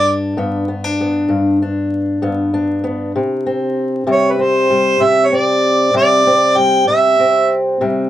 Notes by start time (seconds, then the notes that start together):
Already playing: G2 D4 D5
0.37 G2 B3
0.68 B3
0.84 D4
1.01 B3
1.29 G2
1.62 D4
2.22 G2 B3
2.54 D4
2.84 B3
3.16 C3
3.46 C4
4.07 C3 G3
4.12 C#5
4.31 B4
4.39 C4 C5
4.70 G3
5.00 C3 E5
5.26 C#5
5.32 C4 D5
5.94 C3 G3 D5
6.27 C4
6.56 G3 G5
6.88 C3 E5
7.19 C4
7.81 C3 G3